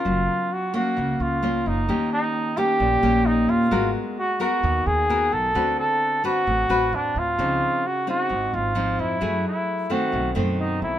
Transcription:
<<
  \new Staff \with { instrumentName = "Flugelhorn" } { \time 4/4 \key ges \major \tempo 4 = 131 f'4 ges'8 ges'4 f'4 ees'8~ | ees'8 ees'4 g'4. ees'8 f'8~ | f'8 r8 ges'8 ges'4 aes'4 a'8~ | a'8 a'4 fis'4. d'8 f'8~ |
f'4 ges'8 ges'4 f'4 fes'8~ | fes'8 fes'4 ges'4 r8 dis'8 fes'8 | }
  \new Staff \with { instrumentName = "Nylon-string guitar" } { \time 4/4 \key ges \major << { <des' f' bes'>4 r8 <bes des'>4. <bes des' f'>4 | <bes des' g'>4. <bes des' g'>4 <bes des' g'>4. | <ces' ges' bes'>4 r8 <ces' ges' bes'>4. <ces' ges' bes'>4 | <c' fis' b'>4. <c' fis' b'>4 <c' fis' b'>4. |
<f c' ees'>4 r8 <c' ees'>4. <f c' ees'>4 | <a fes' aes'>4. <ees a c'>4 <dis a c'>4. | } \\ { ges2 des2 | ees2 bes,2 | aes2 ees2 | d2 a,2 |
des2 aes,2 | ges2 b,2 | } >> }
  \new Staff \with { instrumentName = "Upright bass" } { \clef bass \time 4/4 \key ges \major ges,,8 r4. des,8 des,4 ges,,8 | ees,8 r4. bes,,8 bes,,4 ees,8 | aes,,8 r4. ees,8 ees,4 ces,8 | d,8 r4. a,,8 a,,8 e,8 d,8 |
des,8 r4. aes,,8 aes,,4 f,8 | ges,8 r4. b,,8 fis,4 b,,8 | }
>>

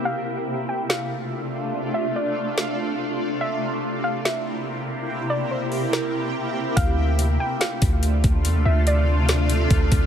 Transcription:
<<
  \new Staff \with { instrumentName = "Synth pluck" } { \time 4/4 \key d \minor \tempo 4 = 143 f''4. g''8 f''2 | r8 e''8 d''2. | e''4. f''8 e''2 | r8 d''8 c''4 bes'2 |
f''4. g''8 f''2 | r8 e''8 d''2. | }
  \new Staff \with { instrumentName = "Ambient pad" } { \time 4/4 \key d \minor <c a d' f'>1~ | <c a d' f'>1 | <c bes e' g'>1~ | <c bes e' g'>1 |
<c a d' f'>1~ | <c a d' f'>1 | }
  \new Staff \with { instrumentName = "808-style bass" } { \clef bass \time 4/4 \key d \minor r1 | r1 | r1 | r1 |
d,4. r4 d,4 d,8 | e,16 d,16 d,2~ d,8 d,8 d,8 | }
  \new DrumStaff \with { instrumentName = "Drums" } \drummode { \time 4/4 r4 r4 sn4 r4 | r4 r4 sn4 r4 | r4 r4 sn4 r4 | r4 r8 hho8 sn4 r4 |
<hh bd>4 hh4 <hh sn>8 <hh bd>8 hh8 <hh bd>8 | hh4 hh4 <hh sn>8 hh8 <hh bd>8 <hh bd>8 | }
>>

